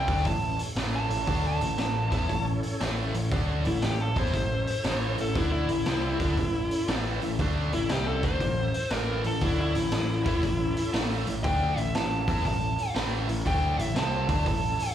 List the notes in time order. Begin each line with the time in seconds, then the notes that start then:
Already playing: C#4 E4 A4 G5
0.08 D2 D3 A3 D4, kick, open hi-hat
0.17 snare
0.25 A1 A2 E3 C#4 E4 A4 C#5 A5, kick, open hi-hat
0.59 open hi-hat
0.76 A1 A2 E3 A3, snare, open hi-hat
0.96 A5
1.10 A1 A2 E3, open hi-hat
1.27 D2 D3 A3 D4, kick, open hi-hat
1.48 A5
1.61 A1 A2 E3, open hi-hat
1.78 A1 A2 E3, snare, open hi-hat
2.11 E2 E3 B3 E4, kick, snare, open hi-hat
2.29 A1 A2 E3, kick, open hi-hat
2.63 open hi-hat
2.81 A1 A2 E3 A3, snare, open hi-hat
3.14 A1 A2 E3, open hi-hat
3.31 D2 D3 A3 D4, kick, open hi-hat
3.65 A1 A2 E3 E4, open hi-hat
3.82 A1 A2 E3 G4, snare, open hi-hat
4.01 A4
4.16 E2 E3 B3 E4 C5, kick, open hi-hat
4.26 snare
4.33 A1 A2 E3 C#4 E4 A4 E5, kick, open hi-hat
4.67 open hi-hat
4.84 A1 A2 E3 A3, snare, open hi-hat
5.18 A1 A2 E3 A4, open hi-hat
5.35 D2 D3 A3 D4 E4, kick, open hi-hat
5.52 E4
5.68 A1 A2 E3, open hi-hat
5.86 C2 C3 G3 C4, snare, open hi-hat
6.19 D2 D3 A3 D4, kick, snare, open hi-hat
6.37 A1 A2 E3, kick, open hi-hat
6.71 open hi-hat
6.88 A1 A2 E3 A3, snare, open hi-hat
7.22 A1 A2 E3, open hi-hat
7.39 D2 D3 A3 D4, kick, open hi-hat
7.72 A1 A2 E3 E4, open hi-hat
7.89 C2 C3 G3 C4 G4, snare, open hi-hat
8.08 A4
8.23 D2 D3 A3 D4 C5, kick, open hi-hat
8.40 A1 A2 E3 D4 F4 A#4 D5, kick, open hi-hat
8.59 C#4 E4 A4 E5
8.74 open hi-hat
8.90 A1 A2 E3 A3 A#4, snare, open hi-hat
9.24 A1 A2 E3 A4, open hi-hat
9.41 D2 D3 A3 D4 E4, kick, open hi-hat
9.61 E4
9.74 A1 A2 E3, open hi-hat
9.92 A1 A2 E3, snare, open hi-hat
10.25 E2 E3 B3 E4, kick, open hi-hat
10.43 A1 A2 E3, kick, open hi-hat
10.77 open hi-hat
10.93 A1 A2 E3 A3, snare, open hi-hat
11.27 A1 A2 E3, open hi-hat
11.44 D2 D3 A3 D4 G5, kick, open hi-hat
11.77 A1 A2 E3 E5, open hi-hat
11.94 A1 A2 E3 A5, snare, open hi-hat
12.28 E2 E3 B3 E4, kick, open hi-hat
12.37 snare
12.45 A1 A2 E3 F4 A#4 D5 A5, kick, open hi-hat
12.63 E4 A4 C#5
12.79 open hi-hat
12.95 A1 A2 E3 A3, snare, open hi-hat
13.28 A1 A2 E3, open hi-hat
13.45 D2 D3 A3 D4 G5, kick, open hi-hat
13.78 A1 A2 E3 E5, open hi-hat
13.95 C2 C3 G3 C4 A5, snare, open hi-hat
14.29 D2 D3 A3 D4, kick, open hi-hat
14.46 A1 A2 E3 A5, kick, open hi-hat
14.79 open hi-hat